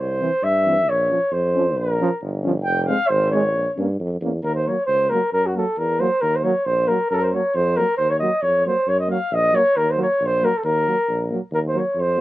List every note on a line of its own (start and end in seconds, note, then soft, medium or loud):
0.00 0.23 C2 medium
0.00 0.45 C5 medium
0.21 0.30 E3 medium
0.21 0.30 C4 medium
0.43 0.90 G2 medium
0.43 0.91 E5 loud
0.66 0.75 E3 medium
0.66 0.74 C4 medium
0.88 1.12 A#1 medium
0.88 1.34 C#5 medium
1.09 1.19 F3 medium
1.09 1.18 C#4 soft
1.31 1.78 F2 medium
1.31 1.79 C5 medium
1.54 1.65 F3 medium
1.54 1.63 C#4 medium
1.76 2.01 A#1 medium
1.76 2.22 A#4 medium
1.99 2.10 F3 medium
1.99 2.08 C#4 medium
2.21 2.67 G1 medium
2.43 2.54 F3 medium
2.43 2.52 C#4 medium
2.64 2.90 F1 loud
2.64 2.83 G5 medium
2.83 3.10 F5 loud
2.83 2.87 G5 medium
2.88 2.97 G#3 medium
2.88 2.97 C4 medium
3.08 3.56 G#1 medium
3.08 3.31 C5 loud
3.31 3.42 G#3 medium
3.31 3.40 C4 medium
3.31 3.73 C#5 medium
3.54 3.67 A#1 medium
3.76 3.97 G2 medium
3.76 3.88 A#3 medium
3.76 3.85 C#4 medium
4.00 4.19 F2 medium
4.21 4.41 E2 medium
4.21 4.32 A#3 medium
4.21 4.31 C#4 medium
4.43 4.68 D#2 medium
4.43 4.54 A#4 medium
4.55 4.69 C5 medium
4.67 4.77 F#3 medium
4.67 4.76 A#3 medium
4.67 4.86 C#5 medium
4.86 5.12 C#2 medium
4.86 5.11 C5 loud
5.10 5.21 F#3 medium
5.10 5.19 A#3 medium
5.10 5.32 A#4 medium
5.33 5.57 F#2 medium
5.33 5.48 A#4 loud
5.47 5.56 F#4 medium
5.54 5.65 F#3 medium
5.54 5.63 A#3 medium
5.54 5.80 A4 medium
5.78 6.02 E2 medium
5.78 6.02 A#4 medium
5.99 6.09 F#3 medium
5.99 6.08 A#3 medium
5.99 6.23 C5 loud
6.21 6.46 D#2 medium
6.21 6.37 A#4 loud
6.36 6.45 C5 medium
6.43 6.53 F#3 medium
6.43 6.52 A#3 medium
6.43 6.67 C#5 medium
6.66 6.91 A#1 medium
6.66 6.89 C5 medium
6.86 6.98 F#3 medium
6.86 6.95 A#3 medium
6.86 7.10 A#4 medium
7.10 7.35 F#2 medium
7.10 7.18 A4 medium
7.10 7.15 A#4 loud
7.16 7.23 A#4 loud
7.22 7.30 A#4 medium
7.22 7.26 C5 medium
7.29 7.41 A#3 soft
7.29 7.36 C5 medium
7.33 7.42 F#3 medium
7.33 7.56 C#5 medium
7.55 7.79 F2 medium
7.55 7.78 C5 loud
7.77 7.86 F#3 medium
7.77 7.86 A#3 medium
7.77 7.97 A#4 medium
7.97 8.23 D#2 medium
7.97 8.11 C5 loud
8.10 8.19 C#5 medium
8.20 8.30 F#3 medium
8.20 8.30 A#3 medium
8.20 8.44 D#5 medium
8.42 8.67 F2 medium
8.42 8.65 C#5 loud
8.66 8.75 F#3 medium
8.66 8.74 A#3 medium
8.66 8.90 C5 medium
8.87 9.11 F#2 medium
8.87 8.99 C#5 loud
8.99 9.09 D#5 medium
9.08 9.18 F#3 medium
9.08 9.17 A#3 medium
9.08 9.35 F5 medium
9.31 9.55 A#1 medium
9.31 9.57 D#5 loud
9.52 9.61 F#3 medium
9.52 9.63 A#3 medium
9.52 9.78 C#5 loud
9.76 10.00 D#2 medium
9.76 9.92 A#4 loud
9.91 9.99 C5 medium
9.97 10.06 F#3 medium
9.97 10.07 A#3 medium
10.02 10.27 C#5 medium
10.20 10.45 A#1 medium
10.26 10.46 C5 medium
10.42 10.51 F#3 medium
10.42 10.51 A#3 medium
10.42 10.59 A#4 medium
10.57 10.64 A4 medium
10.64 10.88 D#2 medium
10.64 11.27 A#4 medium
10.87 10.96 F#3 medium
10.87 10.95 A#3 medium
11.08 11.33 A#1 medium
11.30 11.41 F#3 medium
11.30 11.39 A#3 medium
11.51 11.76 D#2 medium
11.51 11.59 A#4 medium
11.68 11.80 C5 medium
11.74 11.83 F#3 medium
11.74 11.83 A#3 soft
11.78 12.02 C#5 medium
11.95 12.20 F2 medium
12.00 12.21 C5 loud
12.18 12.21 A#3 medium